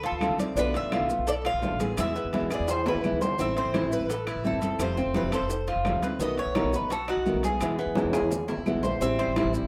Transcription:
Already playing: D2
0.03 F4 A4, high bongo, high conga, high timbale, maracas
0.12 D2
0.21 D3 A3 C4 F4, high bongo, low bongo, high conga, high timbale, claves, maracas
0.30 C2
0.38 A3 C4 F4 D5, high bongo, high conga, high timbale, maracas
0.56 B1 B2 D3 A3 B3 D4 F4 B4, high bongo, high conga, maracas
0.74 A3 B3 F4 E5, high bongo, high conga, high timbale, maracas
0.82 B1
0.91 B2 D3 A3 B3 F4, high bongo, high conga, high timbale, claves, maracas
1.00 B1
1.09 A3 B3 F4, maracas
1.18 B1
1.27 A4 D5, muted nylon-string guitar stroke, high bongo, high conga, high timbale, maracas
1.45 F4 F5, high bongo, high conga, high timbale, claves, maracas
1.54 B1
1.61 B2 D3 A3 B3 F4, high bongo, low bongo, high conga, low timbale, maracas
1.72 A1
1.79 A3 B3 F4 G#4, high bongo, high conga, high timbale, maracas
1.97 E2 B2 E3 G#3 B3 E4 E5, high bongo, high conga, high timbale, claves, maracas
2.15 G#3 B3 E4, high bongo, high conga, maracas
2.25 E2
2.33 B2 E3 G#3 B3 E4, high bongo, high conga, high timbale, maracas
2.42 E2
2.50 G#3 B3 E4 G#4 D5, high timbale, claves, maracas
2.60 E2
2.68 C5, muted nylon-string guitar stroke, high conga, high timbale, maracas
2.86 E4 B4, low bongo, high conga, low timbale, maracas
2.95 E2
3.03 B2 E3 G#3 B3 E4, low bongo, high conga, claves, maracas
3.12 D2
3.21 G#3 B3 E4 C5, low bongo, high conga, low timbale, maracas
3.38 A1 E3 A3 C4 E4 E5, high bongo, high conga, maracas
3.56 A3 C4 E4 C5, high bongo, high conga, high timbale, maracas
3.65 A1
3.73 E3 A3 C4 E4, high bongo, high conga, high timbale, claves, maracas
3.83 A1
3.91 A3 C4 E4 B4, maracas
4.00 A1
4.08 A4, muted nylon-string guitar stroke, high bongo, high conga, high timbale, maracas
4.27 E4, high bongo, high conga, high timbale, claves, maracas
4.35 A1
4.43 E3 A3 C4 E4 A4, high bongo, low bongo, high conga, maracas
4.53 G1
4.61 A3 C4 E4 A4, high bongo, high conga, high timbale, maracas
4.79 F1 C3 F3 A3 C4 F4 C5, high bongo, high conga, high timbale, claves, maracas
4.97 A3 C4 F4, high bongo, high conga, maracas
5.06 F1
5.14 C3 F3 A3 C4 F4 B4, high bongo, high conga, high timbale, maracas
5.23 F1
5.31 A3 C4 F4 A4 C5, high timbale, claves, maracas
5.41 F1
5.49 muted nylon-string guitar stroke, high bongo, high conga, maracas
5.67 F4, high bongo, high conga, high timbale, maracas
5.76 F1
5.84 C3 F3 A3 C4 F4, high bongo, low bongo, high conga, high timbale, low timbale, claves, maracas
5.93 D2
6.02 A3 C4 F4 B4, high bongo, high conga, high timbale, maracas
6.19 B1 B2 D#3 A3 B3 F#4 D#5, high bongo, high conga, maracas
6.37 A3 B3 F#4 C#5, high bongo, high conga, high timbale, maracas
6.46 B1
6.55 B2 D#3 A3 B3 D#4 F#4, high bongo, high conga, high timbale, claves, maracas
6.64 B1
6.72 A3 B3 F#4 B4, maracas
6.81 B1
6.90 F#4 A4, muted nylon-string guitar stroke, high bongo, high conga, high timbale, maracas
7.08 D#4 F#4, high bongo, high conga, high timbale, claves, maracas
7.17 B1
7.25 B2 D#3 A3 B3 F#4, high bongo, low bongo, high conga, maracas
7.34 B1
7.43 A3 B3 F#4 G#4, high bongo, high conga, high timbale, maracas
7.60 E2 B2 E3 G#3 B3 E4, high bongo, high conga, high timbale, claves, maracas
7.78 G#3 B3 E4, high bongo, high conga, maracas
7.86 E2
7.95 B2 E3 G#3 B3 E4, high bongo, high conga, high timbale, maracas
8.04 E2
8.13 G#3 B3 E4 G#4, high bongo, high timbale, claves, maracas
8.22 E2
8.31 muted nylon-string guitar stroke, low bongo, high conga, low timbale, maracas
8.48 E4, low bongo, high conga, low timbale, maracas
8.57 E2
8.66 B2 E3 G#3 B3 E4, low bongo, high conga, claves, maracas
8.74 A#1
8.83 G#3 B3 E4 C5, low bongo, high conga, low timbale, maracas
9.00 A1 E3 G3 C4 E4 E5, high bongo, high conga, maracas
9.18 G3 C4 E4 C5, high bongo, high conga, high timbale, maracas
9.27 A1
9.36 E3 G3 C4 E4, high bongo, high conga, high timbale, claves, maracas
9.45 A1
9.54 G3 C4 E4, maracas
9.62 A1

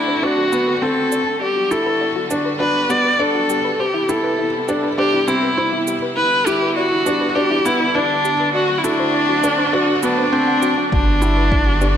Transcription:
Already playing: D3 A3 C4 D4 E4 F#4
0.08 C5
0.23 D4 F#4 D5
0.38 F#4
0.52 B3 F#4, shaker
0.68 A4
0.82 C4 A4 F#5
1.12 D5, shaker
1.27 A5
1.41 G3 B3 F#4 G4 D5
1.56 F#4
1.71 E4 G4 A4, shaker
1.86 B4
2.01 D5
2.16 F#4
2.30 D4 G4, shaker
2.45 B4
2.60 D4 F#4 B4
2.90 B3 G4 D5, shaker
3.05 B4
3.19 D4 A4 D5
3.35 F#4
3.49 G4, shaker
3.65 B4
3.79 C3 E4 G4 C5
3.94 E4
4.09 E4 G4 A4, shaker
4.24 B4
4.39 E4
4.68 D4 G4, shaker
4.83 B4
4.98 D4 G4 C5
5.13 E4
5.28 C4 E4 G4, shaker
5.43 B4
5.58 E4 C5
5.72 E4
5.87 G4, shaker
6.02 B4
6.17 D3 E4 B4
6.46 E4 G4, shaker
6.62 B4
6.76 F#4 D5
6.92 E4
7.06 D4 G4, shaker
7.21 B4
7.35 D4 G4 D5
7.51 E4
7.65 B3 E4 G4, shaker
7.80 B4
7.95 D4 E4
8.25 G4, shaker
8.40 B4
8.54 A3 C4 F#4 D5
8.69 F#4
8.78 E4
8.84 D4 E4 A4, shaker
8.99 C5
9.14 D5
9.29 F#4
9.43 D4 A4, shaker
9.59 C5
9.73 D4 F#4
10.03 B3 D4 F#4, shaker
10.18 C5
10.33 C4 A5
10.48 F#5
10.62 F#4, shaker
10.78 F#4
10.92 G1 D3 G3 B3 D4 F#4, kick
11.22 E4 G4, shaker
11.37 B4
11.52 D5, kick
11.67 F#4
11.81 D4 G4, shaker

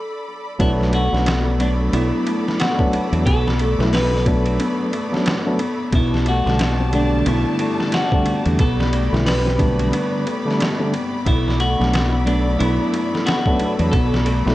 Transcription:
Already playing: A4 D5 B5
0.59 B1 F#3 A3 B3 D4 E4 A4 D5 B5, kick, ride
0.81 snare
0.93 A3 F#4, ride
1.12 B1 F#3 A3 B3 D4, snare
1.26 B3, snare, ride
1.47 B3
1.59 F#3 A3 B3 D4, ride
1.93 B1 B3 E4, ride
2.27 A3, ride
2.48 snare
2.60 B3 F#4, snare, ride
2.78 F#3 A3 B3 D4, kick
2.94 B3, ride
3.13 E2 F#3 A3 B3 D4, ride
3.26 B1 B3 A4, kick, ride
3.48 snare
3.60 A3, ride
3.79 B1 F#3 A3 B3 E4, snare
3.93 B3 B4, snare, open hi-hat
4.13 B3, snare
4.26 F#3 A3 B3 D4, kick, ride
4.46 ride
4.60 B3, ride
4.93 A3, ride
5.12 F#3 A3 B3 D4, snare
5.26 B3, snare, ride
5.45 F#3 A3 B3 D4
5.59 B3, ride
5.92 B1 G3 B3 E4 D5 A5, kick, ride
6.14 snare
6.26 A3 F#4, ride
6.46 B1 D3 G3 A3 D4, snare
6.59 B3, snare, ride
6.79 C4
6.92 D3 G3 A3 B3 D4, ride
7.26 B1 B3 E4, ride
7.59 A3, ride
7.80 snare
7.92 B3 F#4, snare, ride
8.12 D3 G3 A3 C4 D4, kick
8.25 B3, ride
8.45 E2 D3 G3 A3 D4, ride
8.59 B1 B3 A4 B5, kick, ride
8.80 snare
8.92 A3, ride
9.12 B1 D3 G3 A3 E4, snare
9.25 B3 B4, snare, open hi-hat
9.45 C4, snare
9.58 D3 G3 A3 B3 D4, kick, ride
9.80 ride
9.92 B3, ride
10.26 A3, ride
10.45 D3 G3 A3 D4, snare
10.59 B3, snare, ride
10.78 D3 G3 A3 C4 D4
10.92 B3, ride
11.25 B1 B3 E4 A4, kick, ride
11.48 snare
11.59 A3 F#4, ride
11.79 B1 F#3 A3 B3 D4, snare
11.93 B3, snare, ride
12.12 B3
12.26 F#3 A3 B3 D4, ride
12.59 B1 B3 E4, ride
12.93 A3, ride
13.15 snare
13.26 B3 F#4, snare, ride
13.46 F#3 A3 B3 D4, kick
13.59 B3, ride
13.79 E2 F#3 A3 B3 D4, ride
13.92 B1 B3 A4, kick, ride
14.14 snare
14.26 A3, ride
14.45 B1 F#3 A3 B3 E4, snare

